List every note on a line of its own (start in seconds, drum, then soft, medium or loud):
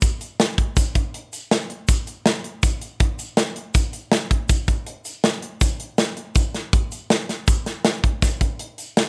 0.02 kick medium
0.02 closed hi-hat medium
0.02 shaker medium
0.21 closed hi-hat medium
0.21 shaker soft
0.40 snare loud
0.40 closed hi-hat medium
0.58 kick medium
0.58 closed hi-hat medium
0.77 kick loud
0.77 closed hi-hat medium
0.77 shaker medium
0.95 kick medium
0.95 closed hi-hat medium
0.95 shaker soft
1.14 closed hi-hat medium
1.33 closed hi-hat medium
1.33 shaker soft
1.51 snare medium
1.51 closed hi-hat medium
1.70 closed hi-hat medium
1.88 kick medium
1.88 closed hi-hat medium
1.88 shaker medium
2.07 closed hi-hat medium
2.07 shaker soft
2.26 snare loud
2.26 closed hi-hat medium
2.44 closed hi-hat medium
2.63 kick loud
2.63 closed hi-hat medium
2.63 shaker medium
2.81 closed hi-hat medium
2.81 shaker soft
3.00 kick loud
3.00 closed hi-hat medium
3.19 closed hi-hat medium
3.19 shaker soft
3.37 snare loud
3.37 closed hi-hat medium
3.56 closed hi-hat medium
3.74 kick loud
3.74 closed hi-hat medium
3.74 shaker soft
3.93 closed hi-hat medium
3.93 shaker soft
4.12 snare loud
4.12 closed hi-hat medium
4.31 kick medium
4.31 closed hi-hat medium
4.49 kick loud
4.49 closed hi-hat medium
4.49 shaker medium
4.68 kick medium
4.68 closed hi-hat medium
4.68 shaker soft
4.87 closed hi-hat medium
5.05 closed hi-hat medium
5.05 shaker soft
5.24 snare loud
5.24 closed hi-hat medium
5.42 closed hi-hat medium
5.61 kick loud
5.61 closed hi-hat medium
5.61 shaker medium
5.80 closed hi-hat medium
5.98 snare loud
5.98 closed hi-hat medium
5.98 shaker soft
6.17 closed hi-hat medium
6.35 kick loud
6.35 closed hi-hat medium
6.35 shaker medium
6.54 snare soft
6.54 closed hi-hat medium
6.73 kick loud
6.73 closed hi-hat medium
6.73 shaker soft
6.92 closed hi-hat medium
6.92 shaker soft
7.10 snare loud
7.10 closed hi-hat medium
7.29 snare soft
7.29 closed hi-hat medium
7.48 kick loud
7.48 closed hi-hat medium
7.48 shaker medium
7.66 snare soft
7.66 closed hi-hat medium
7.66 shaker soft
7.85 snare loud
7.85 closed hi-hat medium
8.04 kick medium
8.04 closed hi-hat medium
8.22 kick loud
8.22 snare soft
8.22 closed hi-hat medium
8.22 shaker medium
8.41 kick medium
8.41 closed hi-hat medium
8.41 shaker soft
8.59 closed hi-hat medium
8.78 closed hi-hat medium
8.78 shaker soft
8.97 snare loud
8.97 closed hi-hat medium